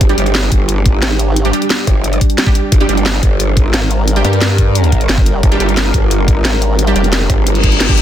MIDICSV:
0, 0, Header, 1, 7, 480
1, 0, Start_track
1, 0, Tempo, 338983
1, 11, Time_signature, 4, 2, 24, 8
1, 11353, End_track
2, 0, Start_track
2, 0, Title_t, "Ambient pad"
2, 0, Program_c, 0, 92
2, 0, Note_on_c, 0, 55, 82
2, 0, Note_on_c, 0, 62, 75
2, 0, Note_on_c, 0, 67, 91
2, 3819, Note_off_c, 0, 67, 0
2, 3852, Note_on_c, 0, 70, 88
2, 11353, Note_off_c, 0, 55, 0
2, 11353, Note_off_c, 0, 62, 0
2, 11353, Note_off_c, 0, 70, 0
2, 11353, End_track
3, 0, Start_track
3, 0, Title_t, "Synth stab"
3, 0, Program_c, 1, 62
3, 131, Note_on_c, 1, 62, 88
3, 132, Note_on_c, 1, 55, 98
3, 132, Note_on_c, 1, 67, 100
3, 233, Note_off_c, 1, 62, 0
3, 234, Note_off_c, 1, 55, 0
3, 234, Note_off_c, 1, 67, 0
3, 251, Note_on_c, 1, 55, 81
3, 251, Note_on_c, 1, 62, 72
3, 251, Note_on_c, 1, 67, 89
3, 355, Note_off_c, 1, 55, 0
3, 355, Note_off_c, 1, 62, 0
3, 355, Note_off_c, 1, 67, 0
3, 2051, Note_on_c, 1, 55, 95
3, 2051, Note_on_c, 1, 62, 87
3, 2051, Note_on_c, 1, 67, 106
3, 2153, Note_off_c, 1, 55, 0
3, 2153, Note_off_c, 1, 67, 0
3, 2154, Note_off_c, 1, 62, 0
3, 2171, Note_on_c, 1, 55, 77
3, 2172, Note_on_c, 1, 62, 70
3, 2172, Note_on_c, 1, 67, 88
3, 2275, Note_off_c, 1, 55, 0
3, 2275, Note_off_c, 1, 62, 0
3, 2275, Note_off_c, 1, 67, 0
3, 3493, Note_on_c, 1, 55, 79
3, 3493, Note_on_c, 1, 62, 73
3, 3493, Note_on_c, 1, 67, 89
3, 3944, Note_off_c, 1, 55, 0
3, 3944, Note_off_c, 1, 62, 0
3, 3944, Note_off_c, 1, 67, 0
3, 3973, Note_on_c, 1, 55, 96
3, 3973, Note_on_c, 1, 62, 84
3, 3973, Note_on_c, 1, 67, 105
3, 4074, Note_off_c, 1, 62, 0
3, 4074, Note_off_c, 1, 67, 0
3, 4075, Note_off_c, 1, 55, 0
3, 4092, Note_on_c, 1, 55, 82
3, 4092, Note_on_c, 1, 62, 73
3, 4092, Note_on_c, 1, 67, 85
3, 4195, Note_off_c, 1, 55, 0
3, 4195, Note_off_c, 1, 62, 0
3, 4195, Note_off_c, 1, 67, 0
3, 5892, Note_on_c, 1, 55, 94
3, 5892, Note_on_c, 1, 62, 86
3, 5892, Note_on_c, 1, 67, 102
3, 5994, Note_off_c, 1, 55, 0
3, 5994, Note_off_c, 1, 62, 0
3, 5994, Note_off_c, 1, 67, 0
3, 6012, Note_on_c, 1, 55, 78
3, 6013, Note_on_c, 1, 62, 73
3, 6013, Note_on_c, 1, 67, 86
3, 6116, Note_off_c, 1, 55, 0
3, 6116, Note_off_c, 1, 62, 0
3, 6116, Note_off_c, 1, 67, 0
3, 7811, Note_on_c, 1, 62, 86
3, 7812, Note_on_c, 1, 55, 95
3, 7812, Note_on_c, 1, 67, 100
3, 7914, Note_off_c, 1, 55, 0
3, 7914, Note_off_c, 1, 62, 0
3, 7914, Note_off_c, 1, 67, 0
3, 7932, Note_on_c, 1, 55, 80
3, 7932, Note_on_c, 1, 62, 71
3, 7932, Note_on_c, 1, 67, 91
3, 8035, Note_off_c, 1, 55, 0
3, 8035, Note_off_c, 1, 62, 0
3, 8035, Note_off_c, 1, 67, 0
3, 9732, Note_on_c, 1, 55, 93
3, 9732, Note_on_c, 1, 62, 87
3, 9732, Note_on_c, 1, 67, 103
3, 9834, Note_off_c, 1, 55, 0
3, 9834, Note_off_c, 1, 62, 0
3, 9834, Note_off_c, 1, 67, 0
3, 9851, Note_on_c, 1, 62, 73
3, 9851, Note_on_c, 1, 67, 89
3, 9852, Note_on_c, 1, 55, 77
3, 9955, Note_off_c, 1, 55, 0
3, 9955, Note_off_c, 1, 62, 0
3, 9955, Note_off_c, 1, 67, 0
3, 11173, Note_on_c, 1, 55, 80
3, 11173, Note_on_c, 1, 62, 74
3, 11173, Note_on_c, 1, 67, 86
3, 11353, Note_off_c, 1, 55, 0
3, 11353, Note_off_c, 1, 62, 0
3, 11353, Note_off_c, 1, 67, 0
3, 11353, End_track
4, 0, Start_track
4, 0, Title_t, "Wobble bass"
4, 0, Program_c, 2, 39
4, 1451, Note_on_c, 2, 32, 98
4, 2152, Note_off_c, 2, 32, 0
4, 5292, Note_on_c, 2, 32, 100
4, 5993, Note_off_c, 2, 32, 0
4, 7211, Note_on_c, 2, 31, 104
4, 7672, Note_off_c, 2, 31, 0
4, 9132, Note_on_c, 2, 32, 101
4, 9833, Note_off_c, 2, 32, 0
4, 9852, Note_on_c, 2, 29, 99
4, 10313, Note_off_c, 2, 29, 0
4, 11353, End_track
5, 0, Start_track
5, 0, Title_t, "Wobble bass"
5, 0, Program_c, 3, 39
5, 12, Note_on_c, 3, 31, 98
5, 233, Note_off_c, 3, 31, 0
5, 253, Note_on_c, 3, 31, 96
5, 713, Note_off_c, 3, 31, 0
5, 732, Note_on_c, 3, 31, 104
5, 1433, Note_off_c, 3, 31, 0
5, 2652, Note_on_c, 3, 31, 103
5, 3113, Note_off_c, 3, 31, 0
5, 3852, Note_on_c, 3, 31, 99
5, 4073, Note_off_c, 3, 31, 0
5, 4092, Note_on_c, 3, 31, 93
5, 4553, Note_off_c, 3, 31, 0
5, 4572, Note_on_c, 3, 31, 106
5, 5273, Note_off_c, 3, 31, 0
5, 6012, Note_on_c, 3, 43, 96
5, 7193, Note_off_c, 3, 43, 0
5, 7692, Note_on_c, 3, 31, 96
5, 7913, Note_off_c, 3, 31, 0
5, 7931, Note_on_c, 3, 31, 100
5, 8392, Note_off_c, 3, 31, 0
5, 8412, Note_on_c, 3, 31, 101
5, 9113, Note_off_c, 3, 31, 0
5, 10332, Note_on_c, 3, 31, 104
5, 11033, Note_off_c, 3, 31, 0
5, 11053, Note_on_c, 3, 31, 96
5, 11353, Note_off_c, 3, 31, 0
5, 11353, End_track
6, 0, Start_track
6, 0, Title_t, "Reverse cymbal"
6, 0, Program_c, 4, 119
6, 10572, Note_on_c, 4, 60, 61
6, 11353, Note_off_c, 4, 60, 0
6, 11353, End_track
7, 0, Start_track
7, 0, Title_t, "Drums"
7, 12, Note_on_c, 9, 36, 127
7, 12, Note_on_c, 9, 42, 95
7, 132, Note_off_c, 9, 42, 0
7, 132, Note_on_c, 9, 42, 39
7, 153, Note_off_c, 9, 36, 0
7, 252, Note_off_c, 9, 42, 0
7, 252, Note_on_c, 9, 42, 71
7, 372, Note_off_c, 9, 42, 0
7, 372, Note_on_c, 9, 42, 36
7, 492, Note_off_c, 9, 42, 0
7, 492, Note_on_c, 9, 38, 127
7, 492, Note_on_c, 9, 42, 94
7, 634, Note_off_c, 9, 38, 0
7, 634, Note_off_c, 9, 42, 0
7, 732, Note_on_c, 9, 36, 64
7, 732, Note_on_c, 9, 42, 69
7, 873, Note_off_c, 9, 36, 0
7, 874, Note_off_c, 9, 42, 0
7, 972, Note_on_c, 9, 42, 93
7, 1114, Note_off_c, 9, 42, 0
7, 1212, Note_on_c, 9, 36, 113
7, 1212, Note_on_c, 9, 42, 68
7, 1353, Note_off_c, 9, 36, 0
7, 1353, Note_off_c, 9, 42, 0
7, 1452, Note_on_c, 9, 38, 127
7, 1452, Note_on_c, 9, 42, 99
7, 1593, Note_off_c, 9, 38, 0
7, 1593, Note_off_c, 9, 42, 0
7, 1691, Note_on_c, 9, 42, 69
7, 1833, Note_off_c, 9, 42, 0
7, 1931, Note_on_c, 9, 42, 94
7, 2052, Note_off_c, 9, 42, 0
7, 2052, Note_on_c, 9, 42, 39
7, 2172, Note_off_c, 9, 42, 0
7, 2172, Note_on_c, 9, 42, 64
7, 2292, Note_off_c, 9, 42, 0
7, 2292, Note_on_c, 9, 42, 36
7, 2412, Note_off_c, 9, 42, 0
7, 2412, Note_on_c, 9, 38, 122
7, 2412, Note_on_c, 9, 42, 92
7, 2554, Note_off_c, 9, 38, 0
7, 2554, Note_off_c, 9, 42, 0
7, 2652, Note_on_c, 9, 36, 65
7, 2652, Note_on_c, 9, 42, 64
7, 2794, Note_off_c, 9, 36, 0
7, 2794, Note_off_c, 9, 42, 0
7, 2892, Note_on_c, 9, 42, 91
7, 3013, Note_off_c, 9, 42, 0
7, 3013, Note_on_c, 9, 42, 36
7, 3132, Note_off_c, 9, 42, 0
7, 3132, Note_on_c, 9, 36, 66
7, 3132, Note_on_c, 9, 42, 66
7, 3253, Note_off_c, 9, 42, 0
7, 3253, Note_on_c, 9, 42, 38
7, 3274, Note_off_c, 9, 36, 0
7, 3372, Note_off_c, 9, 42, 0
7, 3372, Note_on_c, 9, 38, 126
7, 3372, Note_on_c, 9, 42, 92
7, 3492, Note_on_c, 9, 36, 107
7, 3514, Note_off_c, 9, 38, 0
7, 3514, Note_off_c, 9, 42, 0
7, 3612, Note_on_c, 9, 42, 66
7, 3634, Note_off_c, 9, 36, 0
7, 3754, Note_off_c, 9, 42, 0
7, 3852, Note_on_c, 9, 36, 126
7, 3852, Note_on_c, 9, 42, 91
7, 3972, Note_off_c, 9, 42, 0
7, 3972, Note_on_c, 9, 42, 36
7, 3994, Note_off_c, 9, 36, 0
7, 4092, Note_off_c, 9, 42, 0
7, 4092, Note_on_c, 9, 42, 65
7, 4212, Note_off_c, 9, 42, 0
7, 4212, Note_on_c, 9, 42, 34
7, 4332, Note_off_c, 9, 42, 0
7, 4332, Note_on_c, 9, 38, 120
7, 4332, Note_on_c, 9, 42, 86
7, 4473, Note_off_c, 9, 38, 0
7, 4473, Note_off_c, 9, 42, 0
7, 4572, Note_on_c, 9, 36, 64
7, 4572, Note_on_c, 9, 42, 63
7, 4714, Note_off_c, 9, 36, 0
7, 4714, Note_off_c, 9, 42, 0
7, 4812, Note_on_c, 9, 42, 88
7, 4954, Note_off_c, 9, 42, 0
7, 5052, Note_on_c, 9, 36, 109
7, 5052, Note_on_c, 9, 42, 63
7, 5193, Note_off_c, 9, 36, 0
7, 5194, Note_off_c, 9, 42, 0
7, 5292, Note_on_c, 9, 38, 123
7, 5292, Note_on_c, 9, 42, 92
7, 5433, Note_off_c, 9, 38, 0
7, 5433, Note_off_c, 9, 42, 0
7, 5532, Note_on_c, 9, 42, 62
7, 5673, Note_off_c, 9, 42, 0
7, 5771, Note_on_c, 9, 42, 88
7, 5892, Note_off_c, 9, 42, 0
7, 5892, Note_on_c, 9, 42, 36
7, 6012, Note_off_c, 9, 42, 0
7, 6012, Note_on_c, 9, 42, 65
7, 6132, Note_off_c, 9, 42, 0
7, 6132, Note_on_c, 9, 42, 35
7, 6251, Note_off_c, 9, 42, 0
7, 6251, Note_on_c, 9, 38, 115
7, 6251, Note_on_c, 9, 42, 84
7, 6393, Note_off_c, 9, 38, 0
7, 6393, Note_off_c, 9, 42, 0
7, 6491, Note_on_c, 9, 42, 61
7, 6492, Note_on_c, 9, 36, 60
7, 6633, Note_off_c, 9, 36, 0
7, 6633, Note_off_c, 9, 42, 0
7, 6731, Note_on_c, 9, 42, 90
7, 6851, Note_off_c, 9, 42, 0
7, 6851, Note_on_c, 9, 42, 35
7, 6971, Note_off_c, 9, 42, 0
7, 6971, Note_on_c, 9, 42, 65
7, 6972, Note_on_c, 9, 36, 63
7, 7092, Note_off_c, 9, 42, 0
7, 7092, Note_on_c, 9, 42, 36
7, 7113, Note_off_c, 9, 36, 0
7, 7212, Note_off_c, 9, 42, 0
7, 7212, Note_on_c, 9, 38, 118
7, 7212, Note_on_c, 9, 42, 90
7, 7331, Note_on_c, 9, 36, 107
7, 7354, Note_off_c, 9, 38, 0
7, 7354, Note_off_c, 9, 42, 0
7, 7452, Note_on_c, 9, 42, 66
7, 7473, Note_off_c, 9, 36, 0
7, 7593, Note_off_c, 9, 42, 0
7, 7692, Note_on_c, 9, 36, 116
7, 7692, Note_on_c, 9, 42, 89
7, 7812, Note_off_c, 9, 42, 0
7, 7812, Note_on_c, 9, 42, 39
7, 7833, Note_off_c, 9, 36, 0
7, 7932, Note_off_c, 9, 42, 0
7, 7932, Note_on_c, 9, 42, 65
7, 8053, Note_off_c, 9, 42, 0
7, 8053, Note_on_c, 9, 42, 37
7, 8173, Note_off_c, 9, 42, 0
7, 8173, Note_on_c, 9, 38, 110
7, 8173, Note_on_c, 9, 42, 89
7, 8314, Note_off_c, 9, 38, 0
7, 8314, Note_off_c, 9, 42, 0
7, 8412, Note_on_c, 9, 36, 60
7, 8413, Note_on_c, 9, 42, 67
7, 8553, Note_off_c, 9, 36, 0
7, 8554, Note_off_c, 9, 42, 0
7, 8652, Note_on_c, 9, 42, 91
7, 8794, Note_off_c, 9, 42, 0
7, 8892, Note_on_c, 9, 36, 108
7, 8892, Note_on_c, 9, 42, 64
7, 9033, Note_off_c, 9, 36, 0
7, 9034, Note_off_c, 9, 42, 0
7, 9132, Note_on_c, 9, 38, 117
7, 9132, Note_on_c, 9, 42, 92
7, 9274, Note_off_c, 9, 38, 0
7, 9274, Note_off_c, 9, 42, 0
7, 9372, Note_on_c, 9, 42, 66
7, 9513, Note_off_c, 9, 42, 0
7, 9612, Note_on_c, 9, 42, 96
7, 9732, Note_off_c, 9, 42, 0
7, 9732, Note_on_c, 9, 42, 38
7, 9852, Note_off_c, 9, 42, 0
7, 9852, Note_on_c, 9, 42, 69
7, 9972, Note_off_c, 9, 42, 0
7, 9972, Note_on_c, 9, 42, 38
7, 10091, Note_off_c, 9, 42, 0
7, 10091, Note_on_c, 9, 38, 108
7, 10091, Note_on_c, 9, 42, 96
7, 10233, Note_off_c, 9, 38, 0
7, 10233, Note_off_c, 9, 42, 0
7, 10332, Note_on_c, 9, 36, 58
7, 10332, Note_on_c, 9, 42, 67
7, 10473, Note_off_c, 9, 42, 0
7, 10474, Note_off_c, 9, 36, 0
7, 10572, Note_on_c, 9, 42, 92
7, 10692, Note_off_c, 9, 42, 0
7, 10692, Note_on_c, 9, 42, 36
7, 10812, Note_off_c, 9, 42, 0
7, 10812, Note_on_c, 9, 36, 62
7, 10812, Note_on_c, 9, 42, 69
7, 10932, Note_off_c, 9, 42, 0
7, 10932, Note_on_c, 9, 42, 38
7, 10954, Note_off_c, 9, 36, 0
7, 11052, Note_off_c, 9, 42, 0
7, 11052, Note_on_c, 9, 38, 120
7, 11052, Note_on_c, 9, 42, 96
7, 11172, Note_on_c, 9, 36, 102
7, 11193, Note_off_c, 9, 38, 0
7, 11193, Note_off_c, 9, 42, 0
7, 11292, Note_on_c, 9, 42, 69
7, 11314, Note_off_c, 9, 36, 0
7, 11353, Note_off_c, 9, 42, 0
7, 11353, End_track
0, 0, End_of_file